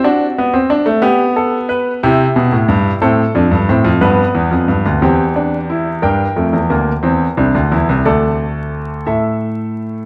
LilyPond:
<<
  \new Staff \with { instrumentName = "Grand piano" } { \time 6/8 \key c \major \tempo 4. = 60 << { fis'4. g'8 a'8 b'8 | g'4. a'4. | b'4. g'4. | \key g \dorian <bes' g''>2. |
<a' d''>4. <a' e''>4. | } \\ { d'8 b16 c'16 d'16 a16 b4. | e'4. c'8 d'8 c'8 | b4. c'8 d'8 e'8 | d'8 a8 bes8 c'8 d'8 e'8 |
a2. | } >> }
  \new Staff \with { instrumentName = "Grand piano" } { \clef bass \time 6/8 \key c \major r2. | c8 b,16 a,16 g,8 a,8 f,16 g,16 a,16 f,16 | g,8 e,16 f,16 g,16 d,16 e,4. | \key g \dorian g,8 f,16 e,16 d,8 e,8 c,16 d,16 e,16 c,16 |
d,4. a,4. | }
>>